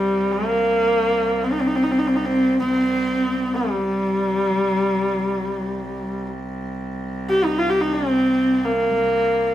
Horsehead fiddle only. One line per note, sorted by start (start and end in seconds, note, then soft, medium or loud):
0.00 0.32 G3 medium
0.31 1.45 A#3 medium
1.44 1.54 C4 medium
1.52 1.62 D#4 medium
1.61 1.68 C4 medium
1.67 1.77 D#4 medium
1.76 1.85 C4 medium
1.83 1.93 D#4 medium
1.91 2.00 C4 medium
1.98 2.09 D#4 medium
2.07 2.17 C4 medium
2.16 2.27 D#4 medium
2.26 2.59 C4 medium
2.60 3.56 C4 medium
3.55 6.27 G3 medium
7.30 7.46 G4 medium
7.45 7.60 D#4 medium
7.58 7.71 F4 medium
7.69 7.82 G4 medium
7.81 7.94 D#4 medium
7.93 8.67 C4 medium
8.66 9.54 A#3 medium